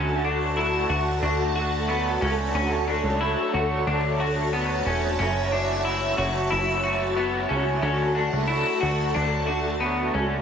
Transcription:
Already playing: analog synth bass D2, overdriven electric guitar D3 F#3 A3 D4 F#4, clean electric guitar C#4, string machine F#4 A4 F#5 A5
0.24 overdriven electric guitar A3 D4 F#4
0.57 overdriven electric guitar F#3 A3 D4, clean electric guitar E4
0.61 overdriven electric guitar F#4
0.90 analog synth bass D2, overdriven electric guitar D4 F#4
0.94 overdriven electric guitar A3
1.22 analog synth bass D2, overdriven electric guitar D3 F#3 A3 D4 F#4
1.56 overdriven electric guitar A3 D4 F#4
1.87 overdriven electric guitar F#3 A3 D4 F#4, clean electric guitar B3
2.20 analog synth bass C#2, overdriven electric guitar A3 D4 F#4, clean electric guitar C#4
2.54 analog synth bass D2, overdriven electric guitar D3 F#3 A3 D4 F#4, clean electric guitar C#4, string machine C#5
2.87 overdriven electric guitar A3 D4 F#4
3.04 analog synth bass C#2
3.20 overdriven electric guitar F#3 A3 D4 F#4, clean electric guitar E4
3.54 analog synth bass D2, overdriven electric guitar A3 D4 F#4
3.86 analog synth bass D2, overdriven electric guitar D3 F#3 A3 D4 F#4
4.19 overdriven electric guitar A3 D4 F#4
4.53 overdriven electric guitar F#3 A3 D4 F#4, clean electric guitar B3
4.85 analog synth bass E1, overdriven electric guitar A3 D4 F#4, clean electric guitar C#4
5.18 analog synth bass F#1, overdriven electric guitar F#2 C#3 E3 A3 E4 F#4, clean electric guitar C#4, string machine F#4 E5 A5
5.50 overdriven electric guitar E3 A3 E4 F#4, clean electric guitar D4
5.83 overdriven electric guitar E3 A3 E4 F#4
6.16 analog synth bass F#1, overdriven electric guitar E3 A3 E4 F#4
6.50 analog synth bass F#1, overdriven electric guitar F#2 C#3 E3 A3 E4 F#4
6.83 overdriven electric guitar E3 A3 E4 F#4
7.15 overdriven electric guitar E3 A3 E4 F#4, clean electric guitar B3
7.48 analog synth bass C#2, overdriven electric guitar E3 A3 E4 F#4, clean electric guitar C#4
7.81 analog synth bass D2, overdriven electric guitar D3 F#3 A3 D4 F#4, clean electric guitar C#4, string machine A4 F#5 A5
8.14 overdriven electric guitar A3 D4 F#4
8.33 analog synth bass C#2
8.48 overdriven electric guitar F#3 A3 D4 F#4, clean electric guitar E4
8.80 analog synth bass D2, overdriven electric guitar A3 D4 F#4
9.15 analog synth bass D2, overdriven electric guitar D3 F#3 A3 D4 F#4
9.47 overdriven electric guitar A3 D4 F#4
9.80 overdriven electric guitar F#3 A3 D4 F#4, clean electric guitar B3
10.13 analog synth bass C#2, overdriven electric guitar A3 D4 F#4, clean electric guitar C#4

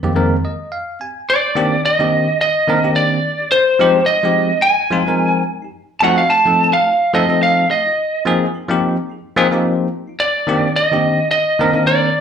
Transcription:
0.03 tine electric piano F2 D#3 G#3 A#3 C4 G4
0.15 tine electric piano F2 D#3 G#3 A#3 C4 A#4
0.43 tine electric piano C4 G4 D#5
0.72 tine electric piano F5
1.00 tine electric piano C4 G4 G#5
1.30 lead electric guitar D5
1.55 tine electric piano D#3 A#3 C4 D4 G4
1.84 tine electric piano D4 G4, lead electric guitar D#5
1.99 tine electric piano D#3 A#3 C4 D4 G4
2.41 tine electric piano D4 G4, lead electric guitar D#5
2.68 tine electric piano D#3 A#3 C4 D4 A#4
2.83 tine electric piano D#3 A#3 C4 D4 G4
2.96 lead electric guitar D5
3.39 tine electric piano D4 G4
3.52 lead electric guitar C5
3.79 tine electric piano F3 G#3 C4 D#4 G4
4.06 tine electric piano D#4 F4, lead electric guitar D#5
4.23 tine electric piano F3 G#3 C4 D#4 G4
4.62 tine electric piano D#4 A#4, lead electric guitar G#5
4.91 tine electric piano F3 G#3 C4 D#4 F4
5.07 tine electric piano F3 G#3 C4 D#4 A#4
5.62 tine electric piano D#4 G4
6.00 tine electric piano F3 A3 C4 D#4 F#4, lead electric guitar F#5 A5
6.18 lead electric guitar F5
6.30 tine electric piano D#4 A4, lead electric guitar A5
6.45 tine electric piano F3 A3 C4 D#4 A4
6.73 lead electric guitar F5
6.86 tine electric piano D#4 F4
7.13 tine electric piano F3 A3 C4 D#4 A4, lead electric guitar D#5
7.28 tine electric piano F3 A3 C4 D#4 A4
7.43 lead electric guitar F5
7.71 lead electric guitar D#5
7.85 tine electric piano D#4 F4
8.25 tine electric piano F3 A#3 C4 D#4 G#4
8.54 tine electric piano D#4 A#4
8.69 tine electric piano F3 A#3 C4 D#4 G4
9.10 tine electric piano D#4 G#4
9.36 tine electric piano F3 A#3 C4 D#4 G#4
9.52 tine electric piano F3 A#3 C4 D#4 G4
10.07 tine electric piano D#4 F4
10.20 lead electric guitar D5
10.47 tine electric piano D#3 A#3 C4 D4 G4
10.76 tine electric piano D4 G4, lead electric guitar D#5
10.91 tine electric piano D#3 A#3 C4 D4 G4
11.31 tine electric piano D4 G4, lead electric guitar D#5
11.59 tine electric piano D#3 A#3 C4 D4 A#4
11.73 tine electric piano D#3 A#3 C4 D4 A#4
11.87 lead electric guitar D5

